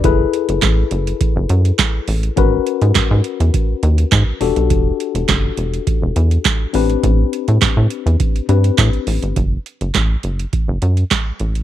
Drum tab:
HH |x-xxx-xxx-xxx-ox|x-xxx-xxx-xxx-ox|x-xxx-xxx-xxx-ox|x-xxx-xxxxxxxxox|
CP |----x-------x---|----x-------x---|----x-------x---|----x-------x---|
SD |----o-------o---|----o-------o---|----o-------o---|----o-------o---|
BD |o---o---o---o---|o---o---o---o---|o---o---o---o---|o---o---o---o---|

HH |x-xxx-xxx-xxx-xx|
CP |----x-------x---|
SD |----o-------o---|
BD |o---o---o---o---|